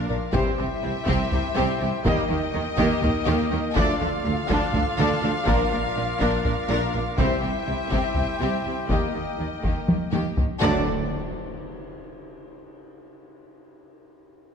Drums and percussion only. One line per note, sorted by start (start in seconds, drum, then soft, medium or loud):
0.33 taiko loud
0.58 taiko rim soft
1.07 taiko medium
1.32 taiko low medium
2.05 taiko loud
2.78 taiko medium
3.04 taiko low medium
3.76 taiko loud
4.50 taiko medium
4.74 taiko low medium
5.47 taiko loud
6.21 taiko medium
6.45 taiko low medium
7.18 taiko loud
7.92 taiko medium
8.16 taiko low medium
8.90 taiko loud
9.63 taiko medium
9.88 taiko high medium
10.13 taiko high medium
10.38 taiko low loud